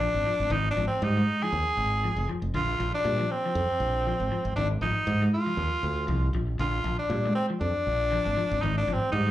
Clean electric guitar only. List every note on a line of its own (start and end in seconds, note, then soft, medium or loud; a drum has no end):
0.01 0.17 F3 medium
0.26 0.43 F3 medium
0.51 0.68 D#3 medium
0.77 0.93 F3 medium
1.03 1.12 G3 medium
1.17 1.34 G#3 medium
1.43 1.59 F3 medium
2.04 2.21 F3 medium
2.29 2.46 F3 medium
2.55 2.71 D3 medium
2.80 2.96 F3 medium
3.05 3.14 G3 medium
3.20 3.36 F3 medium
3.46 3.62 F3 medium
4.07 4.23 F3 medium
4.32 4.48 F3 medium
4.58 4.74 D#3 medium
4.83 4.99 F3 medium
5.08 muted clean electric guitar stroke medium
5.22 5.39 G#3 medium
5.46 5.63 F3 medium
6.09 6.25 F3 medium
6.35 6.51 F3 medium
6.59 6.76 D3 medium
6.85 7.02 F3 medium
7.11 7.20 G3 medium
7.25 7.42 G#3 medium
7.50 7.66 F3 medium
8.12 8.28 F3 medium
8.37 8.54 F3 medium
8.63 8.79 D#3 loud
8.88 9.05 F3 medium
9.14 9.23 G3 medium
9.27 9.31 G#3 medium